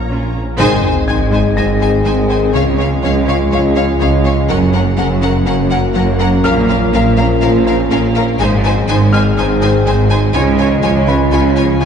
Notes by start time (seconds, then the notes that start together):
Already playing: A#1 A#3 C#4 F4 C#5 F5 A#5 F6 G#6
0.10 A#2 A#3 C#4 F4
0.35 A#2 C#4
0.58 G#1 G#2 D#3 G#3 C4 D#4 G#4 C5 D#5 G#5, sub drop
0.82 D#4 C5 G#5
1.07 G#1 G#2 C4 D#4 C5 G#5 G#6
1.31 G#3 D#4 C5 G#5
1.56 G#1 G#2 D#4 C5 G#5 A#6
1.80 D#4 G#4 C5 G#5
2.04 G#1 G#2 G#3 D#4 C5 G#5
2.30 D#4 C5 G#5
2.53 C#2 C#3 F3 C#4 F4 C#5 F5
2.77 G#3 C#4 C#5 F5
3.02 C#2 F3 C#4 C#5 F5
3.27 C#3 C#4 C#5 F5
3.52 C#2 G#3 C#4 C#5 F5
3.76 C#4 C#5 F5
3.99 C#2 C#3 C#4 C#5 F5
4.25 C#4 C#5 F5
4.49 F#1 F#2 F#3 A#3 C#4 F#4 A#4 F#5
4.73 C#4 A#4 F#5
4.97 F#1 F#2 A#3 C#4 A#4 F#5
5.22 F#3 C#4 A#4 F#5
5.46 F#1 F#2 C#4 A#4 F#5
5.70 C#4 F#4 A#4 F#5
5.94 F#1 F#2 F#3 C#4 A#4 F#5
6.20 C#4 A#4 F#5
6.43 A#1 A#2 F3 A#3 C#4 F4 A#4 F5 F6
6.69 C#4 F4 A#4 F5
6.93 A#1 A#2 C#4 A#4 F5
7.17 A#3 C#4 A#4 F5
7.41 A#1 A#2 C#4 F4 A#4 F5
7.65 C#4 A#4 F5
7.91 A#1 A#2 A#3 C#4 A#4 F5
8.15 C#4 A#4 F5
8.39 G#1 G#2 D#3 G#3 C4 D#4 G#4 C5 G#5
8.64 D#4 C5 G#5
8.88 G#1 G#2 C4 D#4 C5 G#5
9.13 G#3 D#4 C5 G#5 F6
9.37 G#1 G#2 D#4 C5 G#5
9.62 D#4 G#4 C5 G#5
9.85 G#1 G#2 G#3 D#4 C5 G#5
10.10 D#4 C5 G#5
10.33 C#2 C#3 F3 C#4 F4 C#5 G#5
10.58 G#3 F4 C#5 G#5
10.83 C#2 C#3 F3 F4 C#5 G#5
11.08 C#3 F4 B4 C#5 G#5 B5
11.32 C#2 C#3 G#3 F4 C#5 G#5
11.56 C#4 F4 C#5 G#5
11.80 C#2 C#3 F4 C#5 G#5